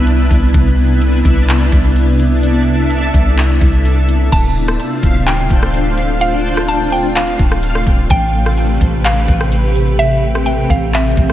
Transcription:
0.00 0.29 C2 loud
0.00 4.28 C3 medium
0.00 4.28 B3 medium
0.00 4.28 D4 medium
0.00 4.28 E4 medium
0.00 0.51 B4 medium
0.00 4.28 E5 medium
0.07 closed hi-hat medium
0.31 0.53 C2 loud
0.31 kick medium
0.31 closed hi-hat medium
0.54 1.22 C2 loud
0.54 4.29 A4 medium
0.54 kick loud
0.54 closed hi-hat medium
1.02 closed hi-hat medium
1.25 1.71 C2 loud
1.25 kick loud
1.25 closed hi-hat medium
1.49 clap loud
1.49 closed hi-hat medium
1.61 closed hi-hat soft
1.72 3.10 C2 loud
1.72 kick medium
1.96 closed hi-hat medium
2.20 closed hi-hat medium
2.43 closed hi-hat medium
2.91 closed hi-hat medium
3.14 3.60 C2 loud
3.14 kick medium
3.14 closed hi-hat medium
3.38 clap loud
3.38 closed hi-hat medium
3.44 closed hi-hat medium
3.50 closed hi-hat medium
3.56 closed hi-hat soft
3.61 4.29 C2 loud
3.61 kick medium
3.85 closed hi-hat medium
4.09 closed hi-hat medium
4.32 4.78 D1 loud
4.32 11.33 C3 medium
4.32 11.33 A3 medium
4.32 8.06 D4 medium
4.32 8.06 F4 medium
4.32 8.06 C5 medium
4.32 8.06 F5 medium
4.32 5.23 A5 medium
4.32 kick loud
4.32 closed hi-hat medium
4.32 crash loud
4.68 cross-stick loud
4.80 closed hi-hat medium
5.03 5.48 D1 loud
5.03 kick medium
5.03 closed hi-hat medium
5.27 5.71 G5 medium
5.27 clap loud
5.27 closed hi-hat medium
5.39 closed hi-hat soft
5.50 7.35 D1 loud
5.50 kick medium
5.63 cross-stick medium
5.74 closed hi-hat medium
5.98 closed hi-hat medium
6.21 6.66 F5 loud
6.21 closed hi-hat medium
6.57 cross-stick loud
6.68 6.91 A5 medium
6.68 closed hi-hat medium
6.92 7.15 G5 medium
6.92 open hi-hat medium
7.16 8.06 F5 medium
7.16 clap loud
7.16 closed hi-hat medium
7.28 closed hi-hat soft
7.39 7.85 D1 loud
7.39 kick medium
7.52 cross-stick medium
7.63 closed hi-hat medium
7.75 cross-stick medium
7.87 8.09 D1 loud
7.87 kick medium
7.87 closed hi-hat medium
8.10 8.78 A1 loud
8.10 11.33 C4 medium
8.10 11.33 G4 medium
8.10 9.97 B4 medium
8.10 11.33 B4 medium
8.10 11.33 G5 medium
8.10 9.01 G5 loud
8.10 kick loud
8.10 closed hi-hat medium
8.46 cross-stick medium
8.58 closed hi-hat medium
8.81 9.26 A1 loud
8.81 kick medium
8.81 closed hi-hat medium
9.05 9.49 F5 medium
9.05 clap loud
9.05 closed hi-hat medium
9.17 closed hi-hat soft
9.28 10.66 A1 loud
9.28 kick medium
9.41 cross-stick medium
9.52 closed hi-hat medium
9.76 closed hi-hat medium
9.99 11.33 C4 medium
9.99 10.44 E5 loud
9.99 closed hi-hat medium
10.35 cross-stick medium
10.46 10.69 G5 medium
10.46 closed hi-hat medium
10.70 11.15 A1 loud
10.70 10.93 F5 medium
10.70 kick medium
10.70 closed hi-hat medium
10.94 11.33 E5 medium
10.94 clap loud
10.94 closed hi-hat medium
11.00 closed hi-hat medium
11.06 closed hi-hat medium
11.11 closed hi-hat soft
11.17 11.33 A1 loud
11.17 kick medium
11.30 cross-stick medium

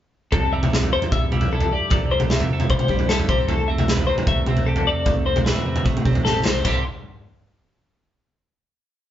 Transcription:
0.32 0.95 C2 medium
0.32 1.11 C3 medium
0.32 0.52 A4 medium
0.32 0.92 A4 medium
0.32 kick loud
0.32 floor tom medium
0.53 1.31 G3 medium
0.53 0.92 E5 medium
0.63 floor tom medium
0.63 mid tom medium
0.73 1.54 E4 medium
0.73 snare medium
0.83 floor tom medium
0.93 1.91 A4 medium
0.93 1.12 C5 medium
1.02 floor tom medium
1.12 1.74 C2 loud
1.12 1.91 G2 medium
1.12 1.52 E5 medium
1.12 kick loud
1.32 2.10 G3 medium
1.32 mid tom medium
1.41 floor tom medium
1.53 2.31 E4 medium
1.53 1.72 A4 medium
1.61 floor tom medium
1.73 1.95 G4 medium
1.73 2.11 D5 medium
1.90 2.38 C2 medium
1.90 2.70 C3 medium
1.90 2.53 A4 medium
1.90 kick loud
1.90 floor tom medium
2.11 2.90 G3 medium
2.11 2.30 C5 medium
2.20 floor tom medium
2.20 mid tom medium
2.30 3.11 E4 soft
2.30 2.70 E5 medium
2.30 snare medium
2.40 floor tom medium
2.50 2.66 C3 medium
2.50 3.28 A4 medium
2.60 floor tom medium
2.60 mid tom medium
2.70 3.30 G2 medium
2.70 2.85 C3 medium
2.70 3.10 C5 medium
2.70 kick loud
2.79 mid tom medium
2.88 3.20 C2 medium
2.88 3.49 G3 medium
2.88 kick medium
2.88 mid tom medium
2.99 floor tom medium
3.09 3.69 E4 medium
3.09 3.29 A4 medium
3.09 snare medium
3.20 floor tom medium
3.29 3.44 C2 medium
3.29 4.09 C3 medium
3.29 3.38 G4 medium
3.29 3.49 C5 medium
3.29 kick loud
3.38 3.88 A4 soft
3.48 4.10 C2 loud
3.48 4.28 A3 medium
3.48 3.68 A4 medium
3.48 floor tom medium
3.68 4.48 C4 medium
3.68 4.06 E5 medium
3.78 floor tom medium
3.78 mid tom medium
3.88 4.85 B4 soft
3.88 snare medium
3.97 floor tom medium
4.07 4.87 C3 medium
4.07 4.27 C5 medium
4.18 floor tom medium
4.27 4.89 C2 loud
4.27 5.06 A3 medium
4.27 4.67 E5 medium
4.27 kick medium
4.46 5.25 C4 medium
4.46 mid tom medium
4.57 floor tom medium
4.66 4.91 G4 medium
4.66 4.86 A4 medium
4.76 floor tom medium
4.87 5.65 C3 medium
4.87 5.46 A4 medium
4.87 5.26 D5 medium
5.06 5.53 C2 medium
5.06 5.84 A3 medium
5.06 kick medium
5.06 floor tom medium
5.26 6.04 C4 medium
5.26 5.45 C5 medium
5.36 floor tom medium
5.36 mid tom medium
5.45 6.43 B4 soft
5.45 5.85 E5 medium
5.45 snare medium
5.56 floor tom medium
5.66 6.44 C3 medium
5.66 5.81 C3 medium
5.76 floor tom medium
5.76 mid tom medium
5.85 6.01 C3 loud
5.85 6.42 A3 medium
5.85 kick loud
5.97 mid tom medium
6.05 6.21 C2 medium
6.05 6.66 C4 medium
6.05 kick medium
6.05 mid tom medium
6.15 floor tom medium
6.25 6.43 A1 medium
6.25 6.44 G4 medium
6.25 6.44 A4 medium
6.25 snare soft
6.45 6.63 B1 medium
6.45 6.64 C3 medium
6.45 6.62 A4 medium
6.45 6.63 C5 medium
6.45 snare medium
6.65 6.83 C2 medium
6.65 6.82 C3 medium
6.65 6.83 G3 medium
6.65 6.83 E4 medium
6.65 6.84 G4 medium
6.65 6.83 C5 medium
6.65 kick medium
6.65 crash medium
6.69 6.84 A4 medium

